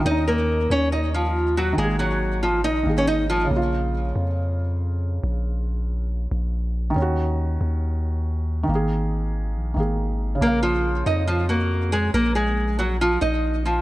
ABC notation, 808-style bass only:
X:1
M:4/4
L:1/8
Q:1/4=139
K:Bbm
V:1 name="808-style bass" clef=bass
E,,3 E,,4- E,, | A,,,4 B,,, A,,,3 | B,,,3 F,,4- F,, | B,,,4- B,,, B,,,3 |
E,,3 E,,4- E,, | A,,,4 B,,, A,,,3 | B,,,3 F,,4- F,, | B,,,4- B,,, B,,,3 |]